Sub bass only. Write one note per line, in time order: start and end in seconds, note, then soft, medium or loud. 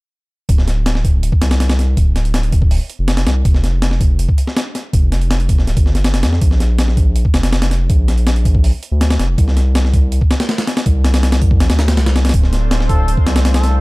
0.49 1.31 D1 medium
1.42 1.96 C2 medium
1.97 2.79 D1 loud
2.99 3.25 F1 medium
3.27 3.43 C2 medium
3.45 4.27 F1 medium
4.93 5.66 F1 medium
5.68 5.76 D1 medium
5.77 6.15 G1 loud
6.14 6.24 F1 medium
6.23 6.40 F2 medium
6.42 7.23 A#1 loud
7.34 7.88 F1 medium
7.90 8.72 A#1 medium
8.92 9.18 D2 medium
9.19 9.36 F1 medium
9.38 10.20 C2 medium
10.86 11.59 C2 medium
11.60 11.69 A#1 medium
11.69 11.99 D2 medium
11.97 12.33 C2 loud
12.34 13.16 D1 loud
13.26 13.81 C2 medium